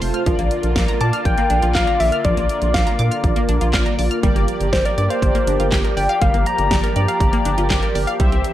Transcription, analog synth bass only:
0.02 F1
0.26 A#1
0.39 A#1
0.64 A#1
0.76 A#1
1.01 A#2
1.25 A#1
1.50 A#1
1.63 A#1
1.75 A#1
2.00 A#1
2.25 A#1
2.37 A#1
2.62 A#1
2.74 A#1
2.99 A#2
3.24 A#1
3.49 A#1
3.61 A#1
3.74 A#1
3.99 A#1
4.23 G1
4.36 G1
4.60 G1
4.73 G1
4.98 G2
5.22 G1
5.47 G1
5.59 G1
5.72 G1
5.97 G1
6.22 G1
6.34 G1
6.59 G1
6.71 G1
6.96 G2
7.20 G1
7.45 G1
7.58 G1
7.70 G1
7.95 G1
8.20 C2
8.32 C2

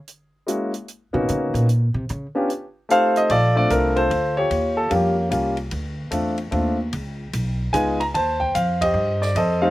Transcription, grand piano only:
0.47 G#3 A#3 C#4 E4 F#4
1.13 A#3 B3 C#4 D#4 F#4
2.35 B3 C#4 D4 F4 G4
2.89 A3 C4 D#4 F4 G4 A4 C5 F5
3.17 D#5
3.31 F4 A4 D5
3.55 A3 C4 D4 F4 D5
3.71 A#4
3.96 F4 A4 C5
4.37 F4 G4 C#5
4.77 A4
4.89 G3 A#3 C#4 F4 G4
4.94 A#3 C#4
5.30 G3 A#3 C#4 F4
6.11 A3 C4 D4 F4
6.51 A3 C4 D4 F4
7.73 G#3 B3 D#4 F4 G#5
8.00 A#5
8.14 C5 A5
8.40 G5
8.55 F5
8.81 G4 C5 D#5
9.22 D5
9.36 A4 C5 D#5
9.61 G3 A3 C4 D#4 A4 C5 F5

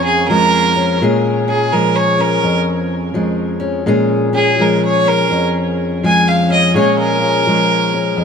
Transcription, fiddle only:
0.04 G#4
0.28 A#4
1.49 G#4
1.73 A#4
1.97 C#5
2.21 A#4
4.35 G#4
4.62 A#4
4.85 C#5
5.08 A#4
6.06 G#5
6.28 F5
6.52 D#5
6.76 C#5
6.99 A#4

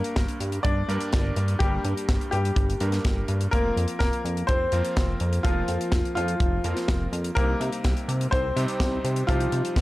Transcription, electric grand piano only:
Already playing: G2 A#3 D4 G4 A#4
0.89 G2 A#3 D4 G4 A#4
1.61 G2 A#3 D4 G4 A#4
2.81 G2 A#3 D4 G4 A#4
3.53 F3 A#3 C4 F4 A#4
4.73 F3 A#3 C4 F4 A#4
5.45 F3 A#3 C4 F4 A#4
6.65 F3 A#3 C4 F4 A#4
7.37 C3 G3 C4 D#4 G4
8.56 C3 G3 C4 D#4 G4
9.29 C3 G3 C4 D#4 G4

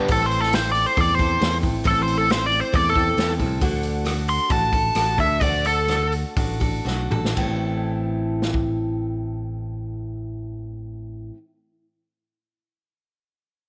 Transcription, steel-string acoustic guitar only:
Already playing: G4 B4
0.11 A2 E3 A3 C4 E4 A4
0.54 A3 C4 E4 A4
0.97 A3 C4 E4 A4
1.19 A3 C4 E4 A4
1.40 A3 C4 E4 A4
1.62 A3 C4 E4 A4
1.84 A2 E3 A3 C4 E4 A4
2.28 A3 C4 E4 A4
2.72 A3 C4 E4 A4
2.94 A3 C4 E4 A4
3.17 A3 C4 E4 A4
3.40 A3 C4 E4 A4
3.61 D3 A3 D4 F#4 A4
4.04 A3 D4 F#4 A4
4.49 A3 D4 F#4 A4
4.73 D4 F#4 A4
4.96 A3 D4 F#4 A4
5.18 D4 F#4 A4
5.42 D3 A3 D4 F#4 A4
5.87 A3 D4 F#4 A4
6.36 A3 D4 F#4 A4
6.60 D4 F#4 A4
6.85 A3 D4 F#4 A4
7.11 D4 F#4 A4
7.36 A2 E3 A3 C4 E4
7.41 A4

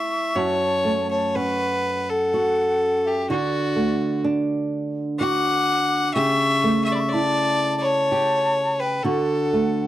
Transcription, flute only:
Already playing: C#6
0.37 A5
1.10 A5
1.36 F#5
2.10 F#5
3.06 E5
3.30 D5
5.20 D6
6.13 C#6
6.86 C#6
6.95 B5
7.00 C#6
7.07 C#6
7.12 A5
7.82 A5 B5
8.80 G5
9.04 F#5

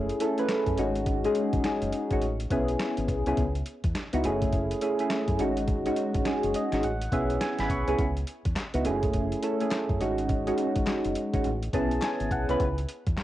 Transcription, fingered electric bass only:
Already playing: F#1
0.66 F#2
0.78 G#1
1.53 G#1
1.82 F#1
2.11 G#1
2.22 A1
2.50 B1
2.98 G#1
3.08 B1
3.26 C2
3.37 C#2
3.84 E2
3.95 muted fingered electric bass stroke
4.13 C#2
4.24 F#1
5.28 F#2
5.39 G#1
6.15 G#1
6.44 F#1
6.73 G#1
6.83 A1
7.12 B1
7.59 G#1
7.70 B1
7.88 C2
7.99 C#2
8.45 E2
8.56 muted fingered electric bass stroke
8.74 C#2
8.85 F#1
9.89 F#2
10.01 G#1
10.76 G#1
10.87 muted fingered electric bass stroke
11.05 F#1
11.34 G#1
11.45 A1
11.73 B1
12.20 G#1
12.31 B1
12.49 C2
12.60 C#2
13.07 E2
13.17 muted fingered electric bass stroke

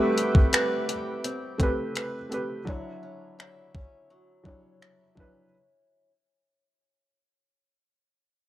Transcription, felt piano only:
Already playing: A3 C4 G4 B4
1.58 A3 C4 G4
1.63 B4
2.29 A3 C4 G4
2.34 B4
2.65 F#3 D4 E4
2.69 C#5
4.43 F#3 D4 E4
4.48 C#5
5.15 F#3 D4 E4
5.20 B4

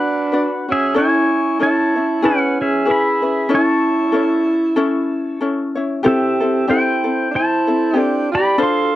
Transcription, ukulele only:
Already playing: D4 F#4 B4 D5
0.32 D4 F#4 B4 D5
0.69 F#4
0.94 C#4 E4 A4 C#5
1.59 C#4 E4 A4 C#5
1.95 C#4 E4 C#5
2.22 C#4 E4 G#4 B4
2.85 C#4 E4 G#4 B4
3.22 C#4 E4 B4
3.49 C#4 E4 A4 C#5
4.12 C#4 E4 A4 C#5
4.76 C#4 E4 A4 C#5
5.41 C#4 E4 A4 C#5
5.75 C#4 E4 C#5
6.03 C4 E4 G4 A4
6.40 C4 E4 A4
6.68 C4 E4 G4 A4
7.04 C4 E4 A4
7.67 C4 E4 A4
7.94 C4 E4 G4 A4
8.58 D4 F4 A4 C5

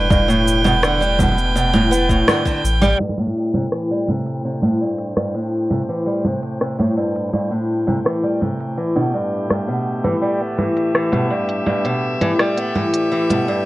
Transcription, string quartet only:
Already playing: A2 A3 B4 G5
3.24 A3
3.42 C5
8.97 G4
9.36 E5

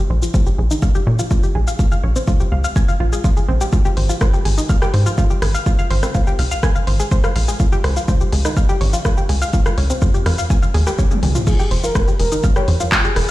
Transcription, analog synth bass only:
0.10 A#1
0.34 A#1
0.58 A#1
1.07 A#2
1.55 A#1
2.03 A#1
2.28 C#2
2.52 C#2
3.00 A#1
3.49 A#1
3.97 G#1
4.21 G#1
4.45 G#1
4.94 G#2
5.42 G#1
5.91 G#1
6.15 C2
6.39 C2
6.87 G#1
7.36 A#1
7.84 C#2
8.08 C#2
8.33 C#2
8.81 G#1
9.29 C#2
9.78 C#2
10.02 F2
10.26 F2
10.74 D#2
11.23 C#2
11.71 F1
11.95 F1
12.20 F1
12.68 F2
13.16 F1

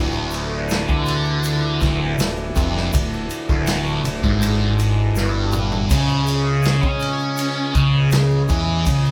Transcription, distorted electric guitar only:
Already playing: D2
0.88 D3
1.81 D2
2.18 D2
2.55 F2
2.93 D2
3.49 D2
4.05 D2
4.23 G#2
5.17 G2
5.91 C#3
6.82 C#4
7.74 C#3
8.12 C#3
8.49 E3
8.87 C#3

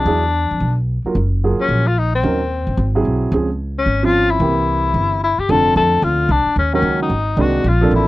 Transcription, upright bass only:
0.05 E2
0.51 F2
0.60 B1
1.05 muted upright bass stroke
1.15 F#1
1.59 muted upright bass stroke
1.69 A#1
2.23 D#2
2.67 G1
2.77 G#1
3.05 B1
3.32 C#2
3.86 G#1
4.40 C2
4.94 G1
5.38 muted upright bass stroke
5.49 F1
5.76 F2
6.02 D2
6.29 C2
6.46 muted upright bass stroke
6.56 D#2
6.82 C#2
7.10 G#1
7.37 C2
7.64 A#1
7.91 A1

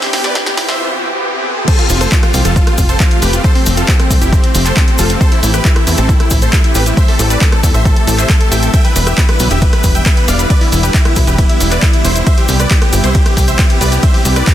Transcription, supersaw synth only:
0.02 G4
0.13 G4
0.24 B4 D5
0.35 G4
0.46 G4
0.57 G4
0.68 C5 E5
1.68 A4 C5
1.79 F4
1.90 F4
2.01 A4 C5
2.12 F4
2.23 F4
2.34 F4
2.45 F4 A4
2.56 F4
2.67 F4
2.78 F4
2.89 A4 C5
3.00 F4
3.11 F4
3.22 G4 B4
3.34 F4
3.44 A4 C5
3.55 C4
3.66 C4
3.77 F4 A4
3.88 C4
3.99 C4
4.10 C4
4.21 E4 G4
4.32 C4
4.44 C4
4.55 C4
4.66 A4 C5
4.77 C4
4.88 C4
4.99 F4 A4
5.10 C4
5.21 A4 C5
5.32 E4
5.43 E4
5.54 G4 B4
5.65 E4
5.76 E4
5.87 E4
5.98 C4 A4
6.09 E4
6.20 E4
6.31 E4
6.42 A4 C5
6.53 E4
6.64 E4
6.75 G4 B4
6.86 E4
6.97 C5 E5
7.08 A4
7.19 A4
7.30 B4 D5
7.41 A4
7.52 A4
7.63 A4
7.74 C5 E5
7.85 A4
7.96 A4
8.07 A4
8.18 C5 E5
8.29 A4
8.40 A4
8.52 E5 G5
8.63 A4
8.74 E5 G5
8.85 B4
8.96 B4
9.07 G4 E5
9.18 B4
9.29 B4
9.40 B4
9.51 G4 E5
9.62 B4
9.73 B4
9.84 B4
9.95 E5 G5
10.06 B4
10.17 B4
10.28 D5 F5
10.39 B4
10.50 B4 D5
10.61 E4
10.72 E4
10.83 G4 B4
10.94 E4
11.05 E4
11.16 E4
11.27 G4 B4
11.38 E4
11.49 E4
11.61 E4
11.72 B4 D5
11.83 E4
11.94 E4
12.05 E4 C5
12.16 E4
12.27 C5 E5
12.38 G4
12.49 G4
12.60 B4 D5
12.71 G4
12.82 G4
12.93 G4
13.04 E4 C5
13.15 G4
13.26 G4
13.37 G4
13.48 C5 E5
13.59 G4
13.70 G4
13.81 B4 D5
13.92 G4
14.03 C5 E5
14.14 G4
14.25 G4
14.36 B4 D5
14.47 G4

